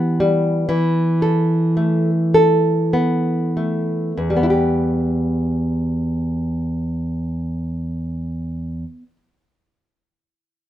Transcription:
nylon-string guitar
Already playing: E3 G3 B3 G4
0.20 G3
0.69 E3
1.22 A4
1.77 A3
2.34 A4
2.93 B3
3.57 A3
4.17 E2
4.30 G3
4.37 B3
4.43 E4
4.50 G4

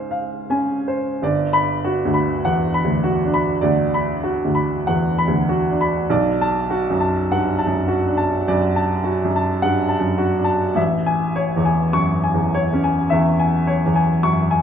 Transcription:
grand piano
Already playing: G#2 C5 F5 G#5
0.11 F5
0.50 C#4 G#5
0.88 C5
1.22 G1 D5
1.53 B5
1.84 F#4
2.05 D2
2.14 B5
2.45 E2 F#5
2.74 B5
2.84 D2
3.04 F#4
3.24 D4
3.34 B5
3.61 D2 D5
3.94 B5
4.23 F#4
4.45 D2
4.55 B5
4.87 E2 F#5
5.18 B5
5.28 D2
5.49 F#4
5.71 D4
5.81 B5
6.10 B1 D5
6.41 A5
6.70 F#4
6.90 F#2
7.01 A5
7.31 G2 F#5
7.58 A5
7.67 F#2
7.88 F#4
8.07 D4
8.17 A5
8.48 F#2 D5
8.76 A5
9.04 F#4
9.24 F#2
9.36 A5
9.62 G2 F#5
9.89 A5
10.00 F#2
10.18 F#4
10.37 D4
10.44 A5
10.75 A1 E5
11.06 G#5
11.36 C#5
11.56 E2
11.65 G#5
11.93 F#2 C#6
12.24 G#5
12.34 E2
12.54 C#5
12.73 C#4
12.84 G#5
13.10 E2 E5
13.39 G#5
13.67 C#5
13.86 E2
13.96 G#5
14.23 F#2 C#6
14.51 G#5

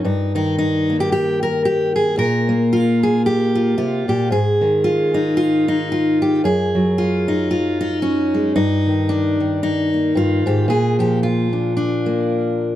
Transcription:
steel-string acoustic guitar
0.04 G2 D#4
0.35 D#3 D#4
0.58 D#4
0.90 A#3
1.00 G4
1.12 G4
1.43 A#4
1.65 G4
1.96 G#4
2.17 A#2 A#4
2.49 A#3
2.73 F4
3.03 G#4
3.26 G4
3.55 F4
3.77 C3 F4
4.08 A#2 G4
4.30 G#2 G#4
4.61 D#3
4.84 F4
5.14 D#4
5.37 F4
5.68 D#4
5.92 F4
6.22 G4
6.44 F#2 G#4
6.75 F#3
6.98 F4
7.28 D#4
7.51 F4
7.81 D#4
8.02 C#4
8.34 G#3
8.56 G2 D#4
8.87 D#3
9.09 D4
9.40 D#3
9.63 D#4
9.94 A#3
10.15 G2 F4
10.46 G#2 G4
10.68 A#2 G#4
10.99 F3 G4
11.23 F4
11.53 D4
11.77 D4
12.06 A#3

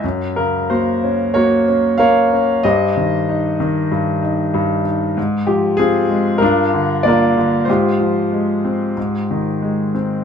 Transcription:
grand piano
0.04 F#2
0.36 C#3 A#4
0.70 A#3 F#4 C5
1.04 C#4
1.34 A#3 F#4 A#4 C#5
1.68 C#4
1.98 A#3 A#4 C#5 F5
2.33 C#4
2.63 G2 G4 C5 D#5
2.97 D#3
3.29 D#4
3.60 D#3
3.92 G2
4.22 D#4
4.54 G2
4.86 D#4
5.17 G#2
5.47 F3 G4
5.77 C4 F4 G#4
6.09 G#3
6.38 G2 F4 A#4
6.42 D4
6.74 D3
7.03 A#3 D5
7.08 F4 A#4
7.37 D3
7.65 G#2 C5
7.69 F4 G4
7.99 F3
8.32 G#3
8.65 C4
8.97 G#2
9.31 D#3
9.62 G#3
9.95 C4

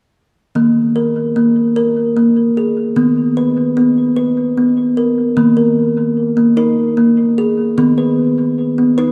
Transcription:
kalimba
0.55 D#3 A#3
0.96 A#4
1.36 A#3
1.76 A#4
2.17 A#3
2.57 G#4
2.96 D#3 B3
3.37 B4
3.77 B3
4.16 B4
4.57 B3
4.97 A#4
5.37 D#3 A#3
5.57 A#4
6.37 A#3
6.57 D#4 A#4
6.97 A#3
7.38 G#4
7.78 D#3 B3
7.98 B4
8.78 B3
8.98 D#4 B4

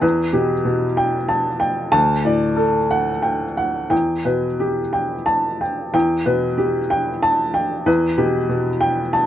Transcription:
upright piano
Already playing: G5
0.02 E2 B4
0.33 B2 G4
0.65 B2
0.97 G5
1.28 A5
1.60 G5
1.92 D2 A5
2.25 A2 D5
2.56 A4
2.91 F#5
3.22 G5
3.57 F#5
3.90 E2 G5
4.25 B2 B4
4.60 G4
4.93 G5
5.26 A5
5.61 G5
5.94 E2 G5
6.26 B2 B4
6.58 G4
6.90 G5
7.22 A5
7.54 G5
7.86 E2 B4
8.18 B2 G4
8.49 B2
8.81 G5
9.13 A5

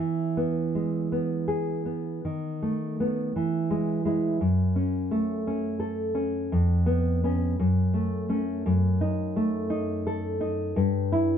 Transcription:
nylon-string guitar
Already playing: E3
0.37 B3
0.75 G#3
1.12 B3
1.48 G#4
1.86 B3
2.25 D#3
2.62 A3
3.00 A3 B3
3.36 E3
3.70 G#3
4.05 G#3 E4
4.41 F#2
4.76 C#4
5.11 A3
5.47 C#4
5.80 A4
6.15 C#4
6.52 F2
6.86 B3
7.24 B3 C#4
7.59 F#2
7.94 A3
8.29 A3 C#4
8.66 F#2
9.01 D#4
9.36 A3
9.70 D#4
10.07 A4
10.41 D#4
10.76 G2
11.12 E4

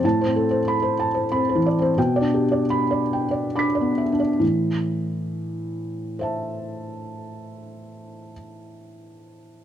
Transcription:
felt piano
0.04 A2 A5
0.21 C5
0.26 C4
0.36 A4
0.51 C5
0.68 B5
0.82 C5
0.99 A5
1.14 C5
1.32 C4 B5
1.49 C5
1.55 E3
1.66 D5
1.79 C4 C5
1.98 B2 G5
2.16 D5
2.21 D4
2.34 G4
2.52 D5
2.70 B5
2.91 D5
3.13 G5
3.31 D5
3.56 D4 B5 D6 B6
3.75 D5
3.81 B3
3.98 E5
4.12 D4
4.20 D5
4.40 A2 E3
6.19 C5 E5 A5

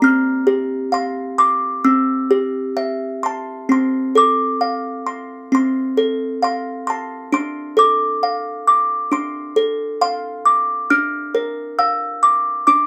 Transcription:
music box
0.02 C4 F6
0.47 G4
0.92 F5 C6
1.38 C6 D6
1.84 C4 E6
2.31 G4
2.77 E5
3.23 A5 C6
3.69 C4 C6
4.15 A4 D6
4.61 F5
5.07 C6
5.52 C4 C6
5.97 A4
6.42 F5 C6
6.87 A5 C6
7.32 D4 C6
7.77 A4 D6
8.23 F5
8.67 D6
9.12 D4 C6
9.56 A4
10.01 F5 C6
10.45 D6
10.90 D4 F6
11.35 A#4
11.79 F5 E6
12.23 D6
12.67 D4 D6

